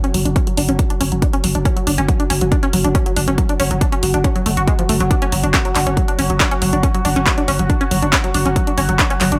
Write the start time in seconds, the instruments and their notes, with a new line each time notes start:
Already playing: synth drone F#3 F#4
0.04 synth arpeggio sound C#4, closed hi-hat
0.14 808-style bass F#1, synth arpeggio sound F#3, open hi-hat
0.25 808-style bass F#1, synth arpeggio sound D4, closed hi-hat
0.36 synth arpeggio sound C#4, kick, closed hi-hat
0.47 synth arpeggio sound F#3, closed hi-hat
0.57 808-style bass F#1, synth arpeggio sound D4, open hi-hat
0.69 808-style bass F#1, synth arpeggio sound C#4, closed hi-hat
0.79 synth arpeggio sound F#3, kick, closed hi-hat
0.90 synth arpeggio sound D4, closed hi-hat
1.01 808-style bass F#1, synth arpeggio sound C#4, open hi-hat
1.12 808-style bass F#1, synth arpeggio sound F#3, closed hi-hat
1.22 synth arpeggio sound D4, kick, closed hi-hat
1.33 synth arpeggio sound C#4, closed hi-hat
1.44 808-style bass F#1, synth arpeggio sound F#3, open hi-hat
1.55 808-style bass F#1, synth arpeggio sound D4, closed hi-hat
1.65 synth arpeggio sound C#4, kick, closed hi-hat
1.76 synth arpeggio sound F#3, closed hi-hat
1.87 808-style bass F#1, synth arpeggio sound D4, open hi-hat
1.98 808-style bass F#1, synth arpeggio sound C#4, closed hi-hat
2.08 synth arpeggio sound F#3, kick, closed hi-hat
2.20 synth arpeggio sound D4, closed hi-hat
2.30 808-style bass F#1, synth arpeggio sound C#4, open hi-hat
2.41 808-style bass F#1, synth arpeggio sound F#3, closed hi-hat
2.52 synth arpeggio sound D4, kick, closed hi-hat
2.63 synth arpeggio sound C#4, closed hi-hat
2.73 808-style bass F#1, synth arpeggio sound F#3, open hi-hat
2.84 808-style bass F#1, synth arpeggio sound D4, closed hi-hat
2.95 synth arpeggio sound C#4, kick, closed hi-hat
3.06 synth arpeggio sound F#3, closed hi-hat
3.16 808-style bass F#1, synth arpeggio sound D4, open hi-hat
3.28 808-style bass F#1, synth arpeggio sound C#4, closed hi-hat
3.38 synth arpeggio sound F#3, kick, closed hi-hat
3.49 synth arpeggio sound D4, closed hi-hat
3.60 808-style bass F#1, synth arpeggio sound C#4, open hi-hat
3.71 808-style bass F#1, synth arpeggio sound F#3, closed hi-hat
3.81 synth arpeggio sound D4, kick, closed hi-hat
3.92 synth arpeggio sound C#4, closed hi-hat
4.03 808-style bass F#1, synth arpeggio sound F#3, open hi-hat
4.14 808-style bass F#1, synth arpeggio sound D4, closed hi-hat
4.24 synth arpeggio sound C#4, kick, closed hi-hat
4.36 synth arpeggio sound F#3, closed hi-hat
4.46 808-style bass F#1, synth arpeggio sound A3, open hi-hat
4.57 808-style bass F#1, synth arpeggio sound F#4, closed hi-hat
4.67 synth arpeggio sound G#3, kick, closed hi-hat
4.79 synth arpeggio sound F3, closed hi-hat
4.89 808-style bass F#1, synth arpeggio sound A3, open hi-hat
5.00 808-style bass F#1, synth arpeggio sound F#3, closed hi-hat
5.11 synth arpeggio sound D4, kick, closed hi-hat
5.22 synth arpeggio sound C#4, closed hi-hat
5.32 808-style bass F#1, synth arpeggio sound F#3, open hi-hat
5.43 808-style bass F#1, synth arpeggio sound D4, closed hi-hat
5.54 synth arpeggio sound C#4, kick, clap, closed hi-hat
5.65 synth arpeggio sound F#3, closed hi-hat
5.75 808-style bass F#1, synth arpeggio sound D4, clap, open hi-hat
5.87 808-style bass F#1, synth arpeggio sound C#4, closed hi-hat
5.97 synth arpeggio sound F#3, kick, closed hi-hat
6.08 synth arpeggio sound D4, closed hi-hat
6.19 808-style bass F#1, synth arpeggio sound C#4, open hi-hat
6.30 808-style bass F#1, synth arpeggio sound F#3, closed hi-hat
6.40 synth arpeggio sound D4, kick, clap, closed hi-hat
6.51 synth arpeggio sound C#4, closed hi-hat
6.62 808-style bass F#1, synth arpeggio sound F#3, open hi-hat
6.73 808-style bass F#1, synth arpeggio sound D4, closed hi-hat
6.83 synth arpeggio sound C#4, kick, closed hi-hat
6.94 synth arpeggio sound F#3, closed hi-hat
7.05 808-style bass F#1, synth arpeggio sound D4, open hi-hat
7.16 808-style bass F#1, synth arpeggio sound C#4, closed hi-hat
7.26 synth arpeggio sound F#3, kick, clap, closed hi-hat
7.38 synth arpeggio sound D4, closed hi-hat
7.48 808-style bass F#1, synth arpeggio sound C#4, open hi-hat
7.59 808-style bass F#1, synth arpeggio sound F#3, closed hi-hat
7.70 synth arpeggio sound D4, kick, closed hi-hat
7.81 synth arpeggio sound C#4, closed hi-hat
7.91 808-style bass F#1, synth arpeggio sound F#3, open hi-hat
8.02 808-style bass F#1, synth arpeggio sound D4, closed hi-hat
8.13 synth arpeggio sound C#4, kick, clap, closed hi-hat
8.24 synth arpeggio sound F#3, closed hi-hat
8.34 808-style bass F#1, synth arpeggio sound D4, open hi-hat
8.46 808-style bass F#1, synth arpeggio sound C#4, closed hi-hat
8.56 synth arpeggio sound F#3, kick, closed hi-hat
8.67 synth arpeggio sound D4, closed hi-hat
8.78 808-style bass F#1, synth arpeggio sound C#4, open hi-hat
8.89 808-style bass F#1, synth arpeggio sound F#3, closed hi-hat
8.99 synth arpeggio sound D4, kick, clap, closed hi-hat
9.10 synth arpeggio sound C#4, closed hi-hat
9.21 808-style bass F#1, synth arpeggio sound F#3, clap, open hi-hat
9.32 808-style bass F#1, synth arpeggio sound D4, closed hi-hat